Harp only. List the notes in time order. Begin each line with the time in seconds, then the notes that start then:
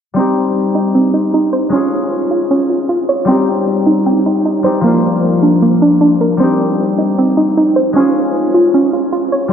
0.14 G3 C4
0.18 D#4 G4
1.69 G#3 C#4
1.74 F4 G#4
3.25 G3 C4
3.29 D#4 G4
4.63 G3 C4 D#4 G4
4.81 F3 A#3
4.85 D4 F4
6.37 G3 C4
6.41 D#4 G4
7.93 G#3 C#4
7.97 F4 G#4
9.48 G3